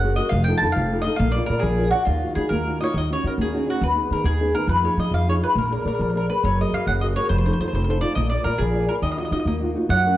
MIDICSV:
0, 0, Header, 1, 4, 480
1, 0, Start_track
1, 0, Key_signature, -6, "minor"
1, 0, Tempo, 290135
1, 543, Time_signature, 6, 3, 24, 8
1, 16827, End_track
2, 0, Start_track
2, 0, Title_t, "Mandolin"
2, 0, Program_c, 0, 25
2, 0, Note_on_c, 0, 78, 67
2, 263, Note_on_c, 0, 75, 74
2, 303, Note_off_c, 0, 78, 0
2, 482, Note_on_c, 0, 77, 75
2, 526, Note_off_c, 0, 75, 0
2, 723, Note_off_c, 0, 77, 0
2, 730, Note_on_c, 0, 79, 76
2, 945, Note_off_c, 0, 79, 0
2, 952, Note_on_c, 0, 81, 92
2, 1034, Note_off_c, 0, 81, 0
2, 1193, Note_on_c, 0, 77, 77
2, 1680, Note_on_c, 0, 75, 83
2, 1725, Note_off_c, 0, 77, 0
2, 1924, Note_on_c, 0, 77, 81
2, 1950, Note_off_c, 0, 75, 0
2, 2178, Note_on_c, 0, 74, 75
2, 2185, Note_off_c, 0, 77, 0
2, 2411, Note_off_c, 0, 74, 0
2, 2418, Note_on_c, 0, 70, 81
2, 2636, Note_on_c, 0, 68, 69
2, 2679, Note_off_c, 0, 70, 0
2, 3118, Note_off_c, 0, 68, 0
2, 3153, Note_on_c, 0, 66, 77
2, 3386, Note_off_c, 0, 66, 0
2, 3393, Note_on_c, 0, 65, 54
2, 3862, Note_off_c, 0, 65, 0
2, 3892, Note_on_c, 0, 68, 66
2, 4119, Note_on_c, 0, 70, 67
2, 4120, Note_off_c, 0, 68, 0
2, 4593, Note_off_c, 0, 70, 0
2, 4643, Note_on_c, 0, 75, 68
2, 4691, Note_on_c, 0, 73, 68
2, 4861, Note_off_c, 0, 75, 0
2, 4908, Note_off_c, 0, 73, 0
2, 4923, Note_on_c, 0, 75, 66
2, 5165, Note_off_c, 0, 75, 0
2, 5174, Note_on_c, 0, 73, 70
2, 5371, Note_off_c, 0, 73, 0
2, 5413, Note_on_c, 0, 70, 58
2, 5496, Note_off_c, 0, 70, 0
2, 5646, Note_on_c, 0, 68, 60
2, 6075, Note_off_c, 0, 68, 0
2, 6121, Note_on_c, 0, 66, 68
2, 6319, Note_off_c, 0, 66, 0
2, 6343, Note_on_c, 0, 71, 63
2, 6784, Note_off_c, 0, 71, 0
2, 6826, Note_on_c, 0, 70, 68
2, 7039, Note_on_c, 0, 68, 75
2, 7052, Note_off_c, 0, 70, 0
2, 7488, Note_off_c, 0, 68, 0
2, 7522, Note_on_c, 0, 70, 79
2, 7735, Note_off_c, 0, 70, 0
2, 7762, Note_on_c, 0, 71, 72
2, 8012, Note_off_c, 0, 71, 0
2, 8018, Note_on_c, 0, 73, 58
2, 8251, Note_off_c, 0, 73, 0
2, 8265, Note_on_c, 0, 75, 80
2, 8469, Note_off_c, 0, 75, 0
2, 8503, Note_on_c, 0, 77, 83
2, 8728, Note_off_c, 0, 77, 0
2, 8756, Note_on_c, 0, 73, 68
2, 8839, Note_off_c, 0, 73, 0
2, 8992, Note_on_c, 0, 71, 74
2, 9196, Note_off_c, 0, 71, 0
2, 9235, Note_on_c, 0, 70, 57
2, 9333, Note_off_c, 0, 70, 0
2, 9353, Note_on_c, 0, 70, 39
2, 9450, Note_off_c, 0, 70, 0
2, 9469, Note_on_c, 0, 70, 49
2, 9592, Note_off_c, 0, 70, 0
2, 9619, Note_on_c, 0, 70, 40
2, 9700, Note_off_c, 0, 70, 0
2, 9720, Note_on_c, 0, 70, 51
2, 9814, Note_off_c, 0, 70, 0
2, 9834, Note_on_c, 0, 70, 42
2, 9921, Note_off_c, 0, 70, 0
2, 9941, Note_on_c, 0, 70, 47
2, 10070, Note_off_c, 0, 70, 0
2, 10089, Note_on_c, 0, 70, 42
2, 10191, Note_off_c, 0, 70, 0
2, 10210, Note_on_c, 0, 70, 44
2, 10339, Note_off_c, 0, 70, 0
2, 10416, Note_on_c, 0, 71, 72
2, 10635, Note_off_c, 0, 71, 0
2, 10664, Note_on_c, 0, 73, 73
2, 10899, Note_off_c, 0, 73, 0
2, 10936, Note_on_c, 0, 75, 66
2, 11140, Note_off_c, 0, 75, 0
2, 11151, Note_on_c, 0, 77, 80
2, 11362, Note_off_c, 0, 77, 0
2, 11372, Note_on_c, 0, 78, 68
2, 11455, Note_off_c, 0, 78, 0
2, 11599, Note_on_c, 0, 75, 60
2, 11682, Note_off_c, 0, 75, 0
2, 11844, Note_on_c, 0, 73, 77
2, 12056, Note_off_c, 0, 73, 0
2, 12062, Note_on_c, 0, 72, 73
2, 12189, Note_off_c, 0, 72, 0
2, 12209, Note_on_c, 0, 72, 57
2, 12320, Note_off_c, 0, 72, 0
2, 12340, Note_on_c, 0, 72, 60
2, 12439, Note_off_c, 0, 72, 0
2, 12459, Note_on_c, 0, 72, 49
2, 12563, Note_off_c, 0, 72, 0
2, 12583, Note_on_c, 0, 72, 62
2, 12682, Note_off_c, 0, 72, 0
2, 12702, Note_on_c, 0, 72, 49
2, 12795, Note_off_c, 0, 72, 0
2, 12815, Note_on_c, 0, 72, 56
2, 12943, Note_off_c, 0, 72, 0
2, 12974, Note_on_c, 0, 72, 51
2, 13050, Note_off_c, 0, 72, 0
2, 13070, Note_on_c, 0, 72, 56
2, 13188, Note_off_c, 0, 72, 0
2, 13251, Note_on_c, 0, 74, 74
2, 13478, Note_off_c, 0, 74, 0
2, 13485, Note_on_c, 0, 75, 68
2, 13717, Note_off_c, 0, 75, 0
2, 13724, Note_on_c, 0, 74, 68
2, 13958, Note_off_c, 0, 74, 0
2, 13966, Note_on_c, 0, 70, 69
2, 14196, Note_on_c, 0, 68, 67
2, 14220, Note_off_c, 0, 70, 0
2, 14662, Note_off_c, 0, 68, 0
2, 14702, Note_on_c, 0, 70, 75
2, 14784, Note_off_c, 0, 70, 0
2, 14930, Note_on_c, 0, 75, 64
2, 15058, Note_off_c, 0, 75, 0
2, 15081, Note_on_c, 0, 75, 53
2, 15171, Note_off_c, 0, 75, 0
2, 15191, Note_on_c, 0, 75, 46
2, 15281, Note_off_c, 0, 75, 0
2, 15300, Note_on_c, 0, 75, 51
2, 15403, Note_off_c, 0, 75, 0
2, 15423, Note_on_c, 0, 75, 59
2, 15523, Note_off_c, 0, 75, 0
2, 15542, Note_on_c, 0, 75, 49
2, 15653, Note_off_c, 0, 75, 0
2, 15673, Note_on_c, 0, 75, 50
2, 15803, Note_off_c, 0, 75, 0
2, 16380, Note_on_c, 0, 78, 87
2, 16827, Note_off_c, 0, 78, 0
2, 16827, End_track
3, 0, Start_track
3, 0, Title_t, "Nylon-string guitar"
3, 0, Program_c, 1, 24
3, 0, Note_on_c, 1, 49, 55
3, 73, Note_on_c, 1, 66, 39
3, 79, Note_on_c, 1, 68, 37
3, 88, Note_on_c, 1, 70, 44
3, 281, Note_off_c, 1, 66, 0
3, 286, Note_off_c, 1, 68, 0
3, 294, Note_off_c, 1, 49, 0
3, 295, Note_off_c, 1, 70, 0
3, 299, Note_on_c, 1, 66, 38
3, 309, Note_on_c, 1, 68, 28
3, 315, Note_on_c, 1, 70, 38
3, 490, Note_off_c, 1, 66, 0
3, 493, Note_off_c, 1, 68, 0
3, 498, Note_off_c, 1, 70, 0
3, 542, Note_on_c, 1, 53, 44
3, 787, Note_on_c, 1, 63, 38
3, 798, Note_on_c, 1, 65, 32
3, 805, Note_on_c, 1, 69, 39
3, 1002, Note_off_c, 1, 63, 0
3, 1010, Note_off_c, 1, 65, 0
3, 1012, Note_off_c, 1, 53, 0
3, 1016, Note_off_c, 1, 69, 0
3, 1022, Note_on_c, 1, 63, 41
3, 1028, Note_on_c, 1, 65, 32
3, 1039, Note_on_c, 1, 69, 43
3, 1264, Note_on_c, 1, 48, 61
3, 1411, Note_off_c, 1, 63, 0
3, 1416, Note_off_c, 1, 65, 0
3, 1419, Note_off_c, 1, 69, 0
3, 1522, Note_on_c, 1, 63, 41
3, 1529, Note_on_c, 1, 65, 36
3, 1537, Note_on_c, 1, 69, 45
3, 1731, Note_off_c, 1, 48, 0
3, 1739, Note_off_c, 1, 63, 0
3, 1742, Note_off_c, 1, 65, 0
3, 1752, Note_off_c, 1, 69, 0
3, 1757, Note_on_c, 1, 63, 39
3, 1767, Note_on_c, 1, 65, 33
3, 1772, Note_on_c, 1, 69, 43
3, 1937, Note_off_c, 1, 63, 0
3, 1939, Note_off_c, 1, 65, 0
3, 1945, Note_off_c, 1, 69, 0
3, 1991, Note_on_c, 1, 58, 59
3, 2238, Note_on_c, 1, 65, 35
3, 2246, Note_on_c, 1, 70, 32
3, 2257, Note_on_c, 1, 74, 37
3, 2445, Note_off_c, 1, 65, 0
3, 2452, Note_off_c, 1, 70, 0
3, 2456, Note_off_c, 1, 58, 0
3, 2460, Note_off_c, 1, 74, 0
3, 2465, Note_on_c, 1, 65, 43
3, 2472, Note_on_c, 1, 70, 36
3, 2479, Note_on_c, 1, 74, 46
3, 2702, Note_on_c, 1, 53, 62
3, 2855, Note_off_c, 1, 65, 0
3, 2859, Note_off_c, 1, 70, 0
3, 2863, Note_off_c, 1, 74, 0
3, 2956, Note_on_c, 1, 65, 41
3, 2963, Note_on_c, 1, 70, 35
3, 2975, Note_on_c, 1, 74, 48
3, 3159, Note_off_c, 1, 65, 0
3, 3173, Note_off_c, 1, 53, 0
3, 3173, Note_off_c, 1, 70, 0
3, 3178, Note_on_c, 1, 65, 36
3, 3180, Note_off_c, 1, 74, 0
3, 3192, Note_on_c, 1, 70, 35
3, 3204, Note_on_c, 1, 74, 46
3, 3367, Note_off_c, 1, 65, 0
3, 3375, Note_off_c, 1, 70, 0
3, 3379, Note_off_c, 1, 74, 0
3, 3423, Note_on_c, 1, 51, 56
3, 3683, Note_on_c, 1, 63, 34
3, 3698, Note_on_c, 1, 66, 35
3, 3702, Note_on_c, 1, 65, 32
3, 3898, Note_off_c, 1, 51, 0
3, 3905, Note_off_c, 1, 63, 0
3, 3917, Note_off_c, 1, 65, 0
3, 3917, Note_off_c, 1, 66, 0
3, 3925, Note_on_c, 1, 63, 40
3, 3934, Note_on_c, 1, 66, 41
3, 3942, Note_on_c, 1, 65, 35
3, 4155, Note_on_c, 1, 58, 45
3, 4317, Note_off_c, 1, 63, 0
3, 4324, Note_off_c, 1, 65, 0
3, 4324, Note_off_c, 1, 66, 0
3, 4401, Note_on_c, 1, 63, 39
3, 4410, Note_on_c, 1, 65, 34
3, 4420, Note_on_c, 1, 66, 41
3, 4624, Note_off_c, 1, 63, 0
3, 4625, Note_off_c, 1, 65, 0
3, 4632, Note_off_c, 1, 58, 0
3, 4637, Note_off_c, 1, 66, 0
3, 4643, Note_on_c, 1, 63, 40
3, 4647, Note_on_c, 1, 65, 32
3, 4656, Note_on_c, 1, 66, 41
3, 4831, Note_off_c, 1, 63, 0
3, 4832, Note_off_c, 1, 65, 0
3, 4839, Note_off_c, 1, 66, 0
3, 4886, Note_on_c, 1, 51, 43
3, 5133, Note_on_c, 1, 61, 32
3, 5135, Note_on_c, 1, 63, 29
3, 5142, Note_on_c, 1, 66, 31
3, 5339, Note_off_c, 1, 61, 0
3, 5344, Note_off_c, 1, 63, 0
3, 5350, Note_off_c, 1, 66, 0
3, 5356, Note_off_c, 1, 51, 0
3, 5358, Note_on_c, 1, 61, 30
3, 5369, Note_on_c, 1, 63, 31
3, 5369, Note_on_c, 1, 66, 35
3, 5582, Note_on_c, 1, 58, 47
3, 5750, Note_off_c, 1, 61, 0
3, 5753, Note_off_c, 1, 63, 0
3, 5756, Note_off_c, 1, 66, 0
3, 5842, Note_on_c, 1, 61, 34
3, 5848, Note_on_c, 1, 63, 33
3, 5856, Note_on_c, 1, 66, 39
3, 6043, Note_off_c, 1, 61, 0
3, 6057, Note_off_c, 1, 63, 0
3, 6060, Note_off_c, 1, 58, 0
3, 6063, Note_on_c, 1, 61, 30
3, 6069, Note_off_c, 1, 66, 0
3, 6077, Note_on_c, 1, 63, 30
3, 6089, Note_on_c, 1, 66, 37
3, 6257, Note_off_c, 1, 61, 0
3, 6265, Note_off_c, 1, 63, 0
3, 6272, Note_off_c, 1, 66, 0
3, 6294, Note_on_c, 1, 51, 49
3, 6539, Note_on_c, 1, 59, 31
3, 6545, Note_on_c, 1, 63, 29
3, 6552, Note_on_c, 1, 68, 36
3, 6774, Note_off_c, 1, 59, 0
3, 6777, Note_off_c, 1, 51, 0
3, 6784, Note_off_c, 1, 63, 0
3, 6791, Note_off_c, 1, 68, 0
3, 6794, Note_on_c, 1, 59, 33
3, 6803, Note_on_c, 1, 63, 31
3, 6811, Note_on_c, 1, 68, 45
3, 7033, Note_on_c, 1, 51, 48
3, 7186, Note_off_c, 1, 59, 0
3, 7192, Note_off_c, 1, 63, 0
3, 7196, Note_off_c, 1, 68, 0
3, 7285, Note_on_c, 1, 59, 36
3, 7288, Note_on_c, 1, 63, 35
3, 7294, Note_on_c, 1, 68, 44
3, 7494, Note_off_c, 1, 59, 0
3, 7504, Note_off_c, 1, 51, 0
3, 7505, Note_off_c, 1, 63, 0
3, 7505, Note_off_c, 1, 68, 0
3, 7514, Note_on_c, 1, 59, 30
3, 7523, Note_on_c, 1, 63, 38
3, 7528, Note_on_c, 1, 68, 41
3, 7701, Note_off_c, 1, 59, 0
3, 7707, Note_off_c, 1, 63, 0
3, 7708, Note_off_c, 1, 68, 0
3, 7740, Note_on_c, 1, 53, 53
3, 7993, Note_on_c, 1, 63, 34
3, 8000, Note_on_c, 1, 65, 33
3, 8007, Note_on_c, 1, 68, 45
3, 8214, Note_off_c, 1, 65, 0
3, 8215, Note_off_c, 1, 63, 0
3, 8218, Note_off_c, 1, 53, 0
3, 8225, Note_off_c, 1, 68, 0
3, 8233, Note_on_c, 1, 63, 32
3, 8237, Note_on_c, 1, 65, 36
3, 8245, Note_on_c, 1, 68, 43
3, 8482, Note_on_c, 1, 53, 49
3, 8628, Note_off_c, 1, 63, 0
3, 8628, Note_off_c, 1, 65, 0
3, 8634, Note_off_c, 1, 68, 0
3, 8727, Note_on_c, 1, 63, 39
3, 8736, Note_on_c, 1, 65, 35
3, 8740, Note_on_c, 1, 68, 37
3, 8930, Note_off_c, 1, 63, 0
3, 8940, Note_off_c, 1, 65, 0
3, 8940, Note_off_c, 1, 68, 0
3, 8950, Note_on_c, 1, 63, 29
3, 8953, Note_off_c, 1, 53, 0
3, 8959, Note_on_c, 1, 65, 32
3, 8961, Note_on_c, 1, 68, 42
3, 9142, Note_off_c, 1, 63, 0
3, 9148, Note_off_c, 1, 68, 0
3, 9149, Note_off_c, 1, 65, 0
3, 9183, Note_on_c, 1, 58, 45
3, 9441, Note_on_c, 1, 68, 37
3, 9452, Note_on_c, 1, 70, 33
3, 9458, Note_on_c, 1, 74, 36
3, 9659, Note_off_c, 1, 68, 0
3, 9665, Note_off_c, 1, 70, 0
3, 9668, Note_off_c, 1, 58, 0
3, 9669, Note_off_c, 1, 74, 0
3, 9678, Note_on_c, 1, 68, 32
3, 9688, Note_on_c, 1, 70, 30
3, 9689, Note_on_c, 1, 74, 44
3, 9926, Note_on_c, 1, 53, 50
3, 10079, Note_off_c, 1, 68, 0
3, 10082, Note_off_c, 1, 70, 0
3, 10085, Note_off_c, 1, 74, 0
3, 10166, Note_on_c, 1, 68, 37
3, 10178, Note_on_c, 1, 70, 32
3, 10188, Note_on_c, 1, 74, 42
3, 10399, Note_off_c, 1, 68, 0
3, 10402, Note_off_c, 1, 70, 0
3, 10404, Note_off_c, 1, 53, 0
3, 10411, Note_off_c, 1, 74, 0
3, 10418, Note_on_c, 1, 68, 31
3, 10424, Note_on_c, 1, 70, 30
3, 10431, Note_on_c, 1, 74, 38
3, 10606, Note_off_c, 1, 68, 0
3, 10608, Note_off_c, 1, 70, 0
3, 10613, Note_off_c, 1, 74, 0
3, 10657, Note_on_c, 1, 54, 48
3, 10923, Note_on_c, 1, 66, 32
3, 10932, Note_on_c, 1, 68, 29
3, 10940, Note_on_c, 1, 70, 31
3, 11130, Note_off_c, 1, 54, 0
3, 11132, Note_off_c, 1, 66, 0
3, 11142, Note_off_c, 1, 70, 0
3, 11144, Note_off_c, 1, 68, 0
3, 11152, Note_on_c, 1, 66, 33
3, 11164, Note_on_c, 1, 68, 27
3, 11165, Note_on_c, 1, 70, 38
3, 11369, Note_on_c, 1, 49, 55
3, 11537, Note_off_c, 1, 66, 0
3, 11543, Note_off_c, 1, 70, 0
3, 11544, Note_off_c, 1, 68, 0
3, 11619, Note_on_c, 1, 66, 41
3, 11622, Note_on_c, 1, 68, 34
3, 11632, Note_on_c, 1, 70, 45
3, 11834, Note_off_c, 1, 66, 0
3, 11841, Note_off_c, 1, 49, 0
3, 11846, Note_off_c, 1, 70, 0
3, 11848, Note_off_c, 1, 68, 0
3, 11854, Note_on_c, 1, 66, 35
3, 11866, Note_on_c, 1, 70, 37
3, 11868, Note_on_c, 1, 68, 31
3, 12040, Note_off_c, 1, 66, 0
3, 12047, Note_off_c, 1, 70, 0
3, 12048, Note_off_c, 1, 68, 0
3, 12094, Note_on_c, 1, 53, 56
3, 12345, Note_on_c, 1, 63, 34
3, 12356, Note_on_c, 1, 65, 31
3, 12362, Note_on_c, 1, 69, 40
3, 12560, Note_off_c, 1, 53, 0
3, 12573, Note_off_c, 1, 63, 0
3, 12577, Note_off_c, 1, 65, 0
3, 12580, Note_off_c, 1, 69, 0
3, 12591, Note_on_c, 1, 63, 39
3, 12599, Note_on_c, 1, 65, 37
3, 12599, Note_on_c, 1, 69, 38
3, 12823, Note_on_c, 1, 48, 54
3, 12971, Note_off_c, 1, 63, 0
3, 12973, Note_off_c, 1, 65, 0
3, 12974, Note_off_c, 1, 69, 0
3, 13046, Note_on_c, 1, 63, 38
3, 13052, Note_on_c, 1, 65, 32
3, 13065, Note_on_c, 1, 69, 46
3, 13233, Note_off_c, 1, 63, 0
3, 13239, Note_off_c, 1, 65, 0
3, 13248, Note_off_c, 1, 69, 0
3, 13250, Note_on_c, 1, 63, 33
3, 13265, Note_on_c, 1, 65, 39
3, 13268, Note_on_c, 1, 69, 40
3, 13281, Note_off_c, 1, 48, 0
3, 13449, Note_off_c, 1, 63, 0
3, 13452, Note_off_c, 1, 65, 0
3, 13458, Note_off_c, 1, 69, 0
3, 13502, Note_on_c, 1, 58, 53
3, 13749, Note_on_c, 1, 65, 38
3, 13759, Note_on_c, 1, 70, 30
3, 13763, Note_on_c, 1, 74, 40
3, 13951, Note_off_c, 1, 65, 0
3, 13961, Note_off_c, 1, 70, 0
3, 13971, Note_on_c, 1, 65, 34
3, 13972, Note_off_c, 1, 74, 0
3, 13976, Note_off_c, 1, 58, 0
3, 13981, Note_on_c, 1, 70, 34
3, 13992, Note_on_c, 1, 74, 37
3, 14207, Note_on_c, 1, 53, 56
3, 14369, Note_off_c, 1, 65, 0
3, 14376, Note_off_c, 1, 70, 0
3, 14382, Note_off_c, 1, 74, 0
3, 14457, Note_on_c, 1, 65, 38
3, 14471, Note_on_c, 1, 70, 32
3, 14474, Note_on_c, 1, 74, 40
3, 14680, Note_off_c, 1, 65, 0
3, 14688, Note_off_c, 1, 53, 0
3, 14688, Note_off_c, 1, 70, 0
3, 14695, Note_off_c, 1, 74, 0
3, 14700, Note_on_c, 1, 65, 41
3, 14706, Note_on_c, 1, 70, 28
3, 14720, Note_on_c, 1, 74, 38
3, 14889, Note_off_c, 1, 65, 0
3, 14894, Note_off_c, 1, 70, 0
3, 14898, Note_off_c, 1, 74, 0
3, 14929, Note_on_c, 1, 51, 53
3, 15176, Note_on_c, 1, 63, 34
3, 15182, Note_on_c, 1, 66, 31
3, 15187, Note_on_c, 1, 65, 32
3, 15406, Note_off_c, 1, 51, 0
3, 15406, Note_off_c, 1, 63, 0
3, 15412, Note_off_c, 1, 65, 0
3, 15416, Note_off_c, 1, 66, 0
3, 15425, Note_on_c, 1, 63, 35
3, 15436, Note_on_c, 1, 66, 34
3, 15437, Note_on_c, 1, 65, 32
3, 15659, Note_on_c, 1, 58, 48
3, 15818, Note_off_c, 1, 63, 0
3, 15822, Note_off_c, 1, 65, 0
3, 15825, Note_off_c, 1, 66, 0
3, 15902, Note_on_c, 1, 63, 38
3, 15910, Note_on_c, 1, 66, 39
3, 15918, Note_on_c, 1, 65, 34
3, 16108, Note_off_c, 1, 63, 0
3, 16120, Note_off_c, 1, 66, 0
3, 16124, Note_off_c, 1, 65, 0
3, 16128, Note_on_c, 1, 63, 34
3, 16135, Note_off_c, 1, 58, 0
3, 16138, Note_on_c, 1, 66, 37
3, 16148, Note_on_c, 1, 65, 30
3, 16324, Note_off_c, 1, 63, 0
3, 16331, Note_off_c, 1, 66, 0
3, 16333, Note_off_c, 1, 65, 0
3, 16378, Note_on_c, 1, 54, 56
3, 16644, Note_on_c, 1, 61, 38
3, 16649, Note_on_c, 1, 66, 38
3, 16654, Note_on_c, 1, 70, 41
3, 16827, Note_off_c, 1, 54, 0
3, 16827, Note_off_c, 1, 61, 0
3, 16827, Note_off_c, 1, 66, 0
3, 16827, Note_off_c, 1, 70, 0
3, 16827, End_track
4, 0, Start_track
4, 0, Title_t, "Upright bass"
4, 0, Program_c, 2, 32
4, 0, Note_on_c, 2, 30, 63
4, 281, Note_off_c, 2, 30, 0
4, 526, Note_on_c, 2, 29, 81
4, 846, Note_off_c, 2, 29, 0
4, 1022, Note_on_c, 2, 41, 60
4, 1172, Note_off_c, 2, 41, 0
4, 1264, Note_on_c, 2, 29, 66
4, 1727, Note_off_c, 2, 29, 0
4, 1977, Note_on_c, 2, 34, 83
4, 2293, Note_off_c, 2, 34, 0
4, 2473, Note_on_c, 2, 46, 62
4, 2620, Note_off_c, 2, 46, 0
4, 2695, Note_on_c, 2, 34, 75
4, 3164, Note_off_c, 2, 34, 0
4, 3419, Note_on_c, 2, 39, 83
4, 3738, Note_off_c, 2, 39, 0
4, 3905, Note_on_c, 2, 51, 61
4, 4060, Note_off_c, 2, 51, 0
4, 4147, Note_on_c, 2, 39, 56
4, 4622, Note_off_c, 2, 39, 0
4, 4869, Note_on_c, 2, 39, 74
4, 5190, Note_off_c, 2, 39, 0
4, 5356, Note_on_c, 2, 51, 57
4, 5509, Note_off_c, 2, 51, 0
4, 5591, Note_on_c, 2, 39, 59
4, 6060, Note_off_c, 2, 39, 0
4, 6310, Note_on_c, 2, 39, 75
4, 6629, Note_off_c, 2, 39, 0
4, 6790, Note_on_c, 2, 51, 54
4, 6944, Note_off_c, 2, 51, 0
4, 7018, Note_on_c, 2, 39, 73
4, 7489, Note_off_c, 2, 39, 0
4, 7735, Note_on_c, 2, 41, 71
4, 8057, Note_off_c, 2, 41, 0
4, 8227, Note_on_c, 2, 53, 59
4, 8382, Note_off_c, 2, 53, 0
4, 8458, Note_on_c, 2, 41, 70
4, 8934, Note_off_c, 2, 41, 0
4, 9190, Note_on_c, 2, 34, 74
4, 9513, Note_off_c, 2, 34, 0
4, 9680, Note_on_c, 2, 46, 55
4, 9836, Note_off_c, 2, 46, 0
4, 9916, Note_on_c, 2, 34, 54
4, 10392, Note_off_c, 2, 34, 0
4, 10650, Note_on_c, 2, 30, 74
4, 10969, Note_off_c, 2, 30, 0
4, 11119, Note_on_c, 2, 42, 44
4, 11277, Note_off_c, 2, 42, 0
4, 11363, Note_on_c, 2, 30, 65
4, 11831, Note_off_c, 2, 30, 0
4, 12076, Note_on_c, 2, 29, 72
4, 12394, Note_off_c, 2, 29, 0
4, 12564, Note_on_c, 2, 41, 52
4, 12716, Note_off_c, 2, 41, 0
4, 12789, Note_on_c, 2, 29, 63
4, 13256, Note_off_c, 2, 29, 0
4, 13505, Note_on_c, 2, 34, 79
4, 13822, Note_off_c, 2, 34, 0
4, 13981, Note_on_c, 2, 46, 57
4, 14136, Note_off_c, 2, 46, 0
4, 14212, Note_on_c, 2, 34, 61
4, 14681, Note_off_c, 2, 34, 0
4, 14922, Note_on_c, 2, 39, 60
4, 15244, Note_off_c, 2, 39, 0
4, 15409, Note_on_c, 2, 51, 53
4, 15566, Note_off_c, 2, 51, 0
4, 15641, Note_on_c, 2, 39, 54
4, 16118, Note_off_c, 2, 39, 0
4, 16365, Note_on_c, 2, 42, 70
4, 16827, Note_off_c, 2, 42, 0
4, 16827, End_track
0, 0, End_of_file